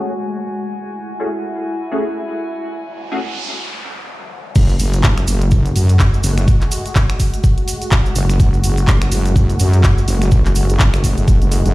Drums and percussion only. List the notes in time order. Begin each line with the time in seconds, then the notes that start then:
4.55 kick, crash, cabasa
4.69 cabasa
4.79 open hi-hat, cabasa
4.93 closed hi-hat, cabasa
5.03 kick, clap, cabasa
5.18 finger snap, closed hi-hat, cabasa
5.28 open hi-hat, cabasa
5.42 closed hi-hat, cabasa
5.51 kick, cabasa
5.66 closed hi-hat, cabasa
5.76 open hi-hat, cabasa
5.89 closed hi-hat, cabasa
5.99 kick, clap, cabasa
6.14 cabasa
6.24 open hi-hat, cabasa
6.38 finger snap, closed hi-hat, cabasa
6.48 kick, cabasa
6.61 clap, closed hi-hat, cabasa
6.71 open hi-hat, cabasa
6.86 closed hi-hat, cabasa
6.95 kick, clap, cabasa
7.10 finger snap, closed hi-hat, cabasa
7.20 kick, open hi-hat, cabasa
7.34 closed hi-hat, cabasa
7.44 kick, cabasa
7.58 closed hi-hat, cabasa
7.68 open hi-hat, cabasa
7.82 closed hi-hat, cabasa
7.91 kick, clap, cabasa
8.06 cabasa
8.15 open hi-hat, cabasa
8.30 finger snap, closed hi-hat, cabasa
8.40 kick, cabasa
8.54 cabasa
8.64 open hi-hat, cabasa
8.78 closed hi-hat, cabasa
8.87 kick, clap, cabasa
9.02 finger snap, closed hi-hat, cabasa
9.12 open hi-hat, cabasa
9.26 closed hi-hat, cabasa
9.36 kick, cabasa
9.50 closed hi-hat, cabasa
9.60 open hi-hat, cabasa
9.73 closed hi-hat, cabasa
9.84 kick, clap, cabasa
9.98 cabasa
10.08 open hi-hat, cabasa
10.22 finger snap, closed hi-hat, cabasa
10.31 kick, cabasa
10.46 clap, closed hi-hat, cabasa
10.55 open hi-hat, cabasa
10.69 closed hi-hat, cabasa
10.80 kick, clap, cabasa
10.94 finger snap, closed hi-hat, cabasa
11.04 kick, open hi-hat, cabasa
11.18 closed hi-hat, cabasa
11.28 kick, cabasa
11.42 closed hi-hat, cabasa
11.52 open hi-hat, cabasa
11.66 closed hi-hat, cabasa